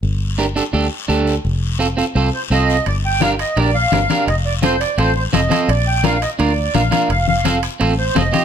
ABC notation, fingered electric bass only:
X:1
M:4/4
L:1/8
Q:1/4=170
K:Gm
V:1 name="Fingered electric bass" clef=bass
G,,,4 D,, z D,,2 | F,,,4 C,, z C,,2 | G,,,4 B,,,2 G,,, z | F,,,4 A,,,2 F,,, z |
B,,,4 D,,2 B,,, z | F,,,4 A,,,2 F,,, z |]